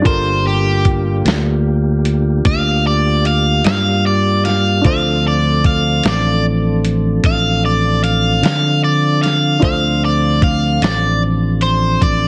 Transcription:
0.02 1.21 G1 medium
0.02 4.79 D4 medium
0.02 4.79 F4 soft
0.02 4.80 F4 medium
0.02 4.80 A4 soft
0.02 4.80 A#4 medium
0.02 kick loud
0.02 closed hi-hat medium
0.06 4.81 A#3 medium
0.06 4.81 D4 medium
0.06 4.81 G4 medium
0.06 0.44 C5 medium
0.47 0.85 G4 medium
0.85 kick medium
0.85 closed hi-hat medium
1.25 2.41 D2 medium
1.25 snare loud
1.25 closed hi-hat medium
2.05 closed hi-hat medium
2.45 3.61 D2 medium
2.45 2.84 F5 medium
2.45 kick medium
2.45 closed hi-hat medium
2.87 3.25 D5 medium
3.25 3.64 F5 medium
3.25 closed hi-hat medium
3.64 4.80 G2 medium
3.64 4.04 F5 medium
3.64 snare loud
3.64 closed hi-hat medium
4.07 4.44 D5 medium
4.45 4.84 F5 medium
4.45 snare soft
4.45 closed hi-hat medium
4.81 6.00 D2 medium
4.81 9.59 F3 medium
4.81 9.59 C4 medium
4.81 9.57 D4 soft
4.81 9.59 D4 medium
4.81 9.58 F4 soft
4.81 9.58 A4 medium
4.81 9.59 A4 soft
4.81 kick medium
4.81 closed hi-hat medium
4.86 9.59 C5 medium
4.86 5.24 F5 medium
5.28 5.65 D5 medium
5.64 6.04 F5 medium
5.64 kick medium
5.64 closed hi-hat medium
6.03 7.20 A1 medium
6.03 snare medium
6.03 closed hi-hat medium
6.08 6.45 D5 medium
6.85 closed hi-hat medium
7.24 8.39 A1 medium
7.24 7.64 F5 medium
7.24 kick medium
7.24 closed hi-hat medium
7.66 8.03 D5 medium
8.04 8.42 F5 medium
8.04 closed hi-hat medium
8.42 9.58 D3 medium
8.42 8.83 F5 medium
8.42 snare loud
8.42 closed hi-hat medium
8.84 9.22 D5 medium
9.23 9.61 F5 medium
9.23 snare soft
9.23 closed hi-hat medium
9.59 10.78 D2 medium
9.59 12.28 F3 medium
9.59 12.28 A3 medium
9.59 12.28 C4 medium
9.59 12.28 D4 soft
9.59 12.28 D4 medium
9.59 12.28 F4 soft
9.59 12.28 A4 soft
9.59 12.28 C5 medium
9.59 kick medium
9.59 closed hi-hat medium
9.65 10.02 F5 medium
10.05 10.42 D5 medium
10.42 10.82 F5 medium
10.42 kick medium
10.42 closed hi-hat medium
10.82 11.97 A1 medium
10.82 11.21 D5 medium
10.82 snare medium
10.82 closed hi-hat medium
11.61 12.01 C5 medium
11.61 closed hi-hat soft
12.02 12.28 A1 medium
12.02 12.28 D5 medium
12.02 kick medium
12.02 closed hi-hat medium

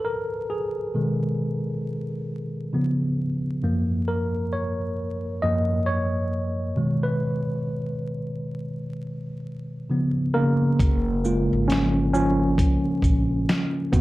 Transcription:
0.00 2.75 A4 medium
0.00 2.75 B4 medium
0.05 0.51 A#4 medium
0.50 3.14 G#4 medium
0.94 1.58 B2 soft
0.94 1.59 D#3 soft
0.94 1.59 G#3 soft
2.73 3.37 C#3 soft
2.73 3.37 F3 soft
2.73 3.38 B3 medium
3.63 5.42 F#2 soft
3.63 5.42 F3 soft
3.63 5.42 A#3 medium
4.08 4.28 A#4 medium
4.53 5.45 C#5 medium
5.42 5.83 F#2 soft
5.42 5.83 F3 soft
5.42 5.83 A#3 medium
5.42 5.88 D#5 medium
5.86 7.08 C#5 medium
6.76 9.86 B2 soft
6.76 9.86 D#3 soft
6.76 9.86 G#3 medium
7.03 8.79 B4 medium
9.90 10.35 C#3 soft
9.90 10.76 F3 soft
9.90 10.76 B3 soft
10.34 11.66 C#3 medium
10.34 11.24 A#3 medium
10.34 11.65 A#4 medium
10.79 11.49 F#1 loud
10.79 kick loud
10.79 closed hi-hat medium
11.24 13.89 G#3 medium
11.24 13.89 A#3 medium
11.24 13.89 F4 medium
11.24 shaker soft
11.53 12.55 G#1 medium
11.68 12.11 F3 medium
11.68 12.12 C#4 loud
11.68 closed hi-hat medium
11.72 snare loud
12.13 13.89 F3 medium
12.13 13.98 C#4 loud
12.13 shaker medium
12.58 kick loud
12.58 closed hi-hat medium
12.87 muted upright bass stroke soft
13.02 13.45 A#1 medium
13.02 kick medium
13.02 closed hi-hat soft
13.02 shaker soft
13.49 snare loud
13.49 closed hi-hat medium
13.92 14.01 G#1 loud
13.92 14.01 D#3 medium
13.92 14.01 A#3 medium
13.92 14.01 B3 medium
13.92 14.01 F#4 medium
13.92 kick loud
13.92 closed hi-hat soft
13.92 shaker soft

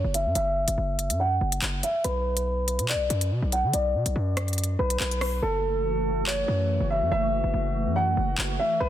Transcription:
0.00 0.11 C#5 medium
0.04 0.27 F#1 loud
0.14 0.33 E5 medium
0.14 closed hi-hat medium
0.25 0.35 F#2 loud
0.35 0.66 F#1 loud
0.35 1.16 E5 medium
0.35 closed hi-hat medium
0.68 0.77 F#1 loud
0.68 closed hi-hat medium
0.78 1.12 F#1 loud
0.99 closed hi-hat medium
1.10 1.40 F#2 loud
1.10 closed hi-hat medium
1.20 1.79 F#5 medium
1.41 1.61 F#1 loud
1.52 closed hi-hat medium
1.62 1.82 F#1 loud
1.62 clap loud
1.62 closed hi-hat medium
1.83 2.02 E5 medium
1.83 closed hi-hat medium
2.04 2.81 B1 loud
2.04 2.85 B4 loud
2.04 closed hi-hat medium
2.37 closed hi-hat medium
2.68 closed hi-hat medium
2.79 2.96 B2 loud
2.79 closed hi-hat medium
2.89 3.49 D5 medium
2.89 clap loud
2.89 closed hi-hat medium
2.95 3.09 B1 loud
3.10 3.33 F#2 loud
3.10 closed hi-hat medium
3.21 closed hi-hat medium
3.31 3.42 B2 loud
3.42 3.65 B1 loud
3.52 3.71 F#5 medium
3.52 closed hi-hat medium
3.64 3.73 D3 loud
3.73 3.96 B1 loud
3.73 4.75 D5 medium
3.73 closed hi-hat medium
3.95 4.05 B2 loud
4.06 4.15 B1 loud
4.06 closed hi-hat medium
4.16 4.77 F#2 loud
4.37 cross-stick medium
4.37 closed hi-hat medium
4.48 closed hi-hat soft
4.53 closed hi-hat medium
4.58 closed hi-hat medium
4.64 closed hi-hat medium
4.79 4.99 B1 loud
4.79 4.98 B4 medium
4.90 closed hi-hat medium
5.00 5.41 B1 loud
5.00 5.40 B4 medium
5.00 clap loud
5.00 closed hi-hat soft
5.11 closed hi-hat medium
5.21 cross-stick medium
5.21 open hi-hat medium
5.42 6.44 F#1 loud
5.42 8.77 E3 medium
5.42 8.77 A3 medium
5.42 8.89 F#4 medium
5.42 6.23 A4 medium
6.27 6.87 C#5 medium
6.27 clap loud
6.48 6.79 F#2 loud
6.80 7.03 F#1 loud
6.90 7.09 E5 medium
7.01 7.11 F#2 medium
7.11 7.42 F#1 loud
7.11 7.92 E5 loud
7.44 7.53 F#1 loud
7.54 7.88 F#1 loud
7.86 8.16 F#2 loud
7.96 8.55 F#5 medium
8.17 8.37 F#1 loud
8.38 8.58 F#1 loud
8.38 clap loud
8.59 8.78 E5 medium
8.80 8.89 B1 loud
8.80 8.89 D3 medium
8.80 8.89 B3 medium
8.80 8.89 B4 loud

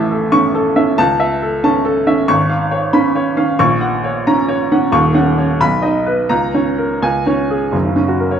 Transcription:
0.00 0.94 A1 medium
0.00 0.95 A2 medium
0.00 0.24 E5 medium
0.00 0.98 A5 medium
0.11 0.46 A4 medium
0.32 0.67 C#4 medium
0.32 0.67 C#6 medium
0.55 0.89 A4 medium
0.76 0.98 C#4 medium
0.76 0.98 E5 medium
0.98 2.25 C#2 medium
0.98 1.33 A5 loud
1.20 1.55 E5 medium
1.42 1.77 A4 medium
1.64 1.98 C#4 medium
1.64 1.98 A5 medium
1.85 2.20 A4 medium
2.07 2.28 C#4 medium
2.07 2.29 E5 medium
2.28 3.55 G#1 medium
2.28 2.63 C#6 loud
2.50 2.84 F5 medium
2.71 3.06 C#5 medium
2.93 3.28 C#4 medium
2.93 3.28 B5 medium
3.15 3.50 C#5 medium
3.37 3.59 C#4 medium
3.37 3.59 F5 medium
3.59 4.88 A#1 medium
3.59 3.94 C#6 medium
3.81 4.16 F#5 medium
4.04 4.39 C#5 medium
4.27 4.62 C#4 medium
4.27 4.62 A#5 medium
4.48 4.84 C#5 medium
4.72 4.93 C#4 medium
4.72 4.93 F#5 medium
4.92 5.58 D#1 medium
4.92 5.58 D#2 medium
4.92 5.28 C#6 medium
5.14 5.50 C#4 medium
5.14 5.51 F#5 medium
5.38 5.60 C#5 medium
5.60 6.29 B1 medium
5.60 5.98 B5 medium
5.82 6.21 D#4 medium
5.82 6.20 D#5 medium
6.06 6.30 B4 medium
6.29 7.00 C#2 medium
6.29 6.68 A#5 medium
6.54 6.93 C#4 medium
6.54 6.93 C#5 medium
6.78 7.02 A#4 medium
7.02 7.71 C#2 medium
7.02 7.40 G#5 medium
7.26 7.64 C#4 medium
7.26 7.64 C#5 medium
7.50 7.74 G#4 medium
7.72 8.40 F#1 medium
7.72 8.40 F#2 medium
7.85 8.03 C#3 medium
7.96 8.15 C#4 medium
8.08 8.26 F#4 medium
8.20 8.38 A#4 soft
8.31 8.40 C#5 medium

